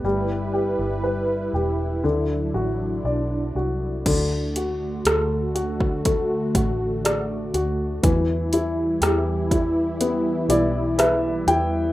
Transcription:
<<
  \new Staff \with { instrumentName = "Upright piano" } { \time 4/4 \key d \mixolydian \tempo 4 = 60 g8 g'8 b'8 g'8 d8 fis'8 d''8 fis'8 | d8 fis'8 a'8 fis'8 a8 fis'8 d''8 fis'8 | e8 e'8 g'8 e'8 b8 <e' d''>8 <b' e''>8 <e' g''>8 | }
  \new Staff \with { instrumentName = "Analog synth pad" } { \time 4/4 \key d \mixolydian <g e' b'>2 <fis d'>2 | <d a fis'>1 | <e g e'>1 | }
  \new Staff \with { instrumentName = "Fingered electric bass" } { \clef bass \time 4/4 \key d \mixolydian g,,8. g,,8. e,,8 d,8 a,,8 b,,8 c,8 | d,4 d,4. a,,4 d,8 | e,4 e,4. b,,4 e,8 | }
  \new DrumStaff \with { instrumentName = "Drums" } \drummode { \time 4/4 r4 r4 r4 r4 | <cymc hh bd>8 hh8 <hh ss>8 hh16 bd16 <hh bd>8 <hh bd>8 <hh ss>8 hh8 | <hh bd>8 hh8 <hh ss>8 <hh bd>8 hh8 hh8 <hh ss>8 hh8 | }
>>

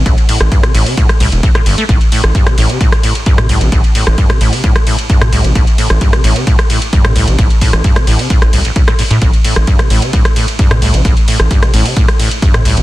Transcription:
<<
  \new Staff \with { instrumentName = "Acid bass" } { \clef bass \time 4/4 \key a \minor \tempo 4 = 131 a,16 r16 a,16 r16 g,16 c16 a,16 c16 a,16 r16 a,16 r16 a,16 a,16 g,16 a16 | a,16 r16 a,16 r16 g,16 c16 a,16 c16 a,16 r16 a,16 r16 g,16 c16 a,16 c16 | a,16 r16 a,16 r16 g,16 c16 a,16 c16 a,16 r16 a,16 r16 g,16 c16 a,16 c16 | a,16 r16 a,16 r16 g,16 c16 a,16 c16 a,16 r16 a,16 r16 g,16 c16 a,16 c16 |
a,16 r16 a,16 r16 g,16 c16 a,16 c16 a,16 r16 a,16 a,,16 a,16 a,16 a,16 a,16 | a,16 r16 a,16 r16 g,16 c16 a,16 c16 a,16 r16 a,16 r16 g,16 c16 a,16 c16 | a,16 r16 a,16 r16 g,16 c16 a,16 c16 a,16 r16 a,16 r16 g,16 c16 a,16 c16 | }
  \new Staff \with { instrumentName = "Analog synth bass" } { \clef bass \time 4/4 \key a \minor a,,16 r8 a,,16 r8 a,,16 r8. c,16 e,,16 r8 g,,16 r16 | a,,16 r8 a,,16 r8 a,,16 r4. a,16 c,16 a,,16 | a,,16 r8 a,,16 r8 a,,16 r4. a,16 c,16 a,,16 | a,,16 r8 a,,16 r8 a,,16 r4. a,16 c,16 a,,16 |
a,,16 r8 a,,16 r8 a,,16 r8 a,,16 c,16 r4 a,16 | a,,16 r8 a,,16 r8 a,,16 r4. a,16 c,16 a,,16 | a,,16 r8 a,,16 r8 a,,16 r4. a,16 c,16 a,,16 | }
  \new DrumStaff \with { instrumentName = "Drums" } \drummode { \time 4/4 <hh bd cymr>16 <hh cymr>16 <hho cymr>16 <cymr ss>16 <hh bd cymr>16 <hh cymr ss>16 <hho cymr>16 <hho cymr>16 <hh bd cymr>16 <hh cymr ss>16 <hho cymr>16 <hh cymr>16 <hh bd cymr>16 <hh cymr ss>16 <hho cymr>16 <hh cymr>16 | <hh bd cymr>16 <hh cymr>16 <hho cymr>16 <hh cymr ss>16 <hh bd cymr>16 <hh cymr ss>16 <hho cymr>16 <hh cymr>16 <hh bd cymr>16 <hh cymr ss>16 <hho cymr>16 <hh cymr>16 <hh bd cymr>16 <hh cymr ss>16 <hho cymr>16 <hh cymr>16 | <hh bd cymr>16 <hh cymr>16 <hho cymr>16 <hh cymr ss>16 <hh bd cymr>16 <hh cymr ss>16 <hho cymr>16 <hho cymr>16 <hh bd cymr>16 <hh cymr ss>16 <hho cymr>16 <hh cymr>16 <hh bd cymr>16 <hh cymr ss>16 <hho cymr>16 <hh cymr>16 | <hh bd cymr>16 <hh cymr>16 <hho cymr>16 <cymr ss>16 <hh bd cymr>16 <hh cymr ss>16 <hho cymr>16 <hh cymr>16 <hh bd cymr>16 <hh cymr ss>16 <hho cymr>16 <hh cymr>16 <hh bd cymr>16 <hh cymr ss>16 <hho cymr>16 <hh cymr>16 |
<hh bd cymr>16 <hh cymr>16 <hho bd cymr>16 <hh cymr ss>16 <hh bd cymr>16 <hh cymr ss>16 <hho cymr>16 <hho cymr>16 <hh bd cymr>16 <hh cymr ss>16 <hho cymr>16 <hh cymr>16 <hh bd cymr>16 <hh cymr ss>16 <hho cymr>16 <hh cymr>16 | <hh bd cymr>16 <hh cymr>16 <hho cymr>16 <hh cymr ss>16 <hh bd cymr>16 <hh cymr ss>16 <hho cymr>16 <hh cymr>16 <hh bd cymr>16 <hh cymr ss>16 <hho cymr>16 <hh cymr>16 <hh bd cymr>16 <hh cymr ss>16 <hho cymr>16 <hh cymr>16 | <hh bd cymr>16 <hh cymr>16 <hho cymr>16 <hh cymr ss>16 <hh bd cymr>16 <hh cymr ss>16 <hho cymr>16 <hho cymr>16 <hh bd cymr>16 <hh cymr ss>16 <hho cymr>16 <hh cymr>16 <hh bd cymr>16 <hh cymr ss>16 <hho cymr>16 <hh cymr>16 | }
>>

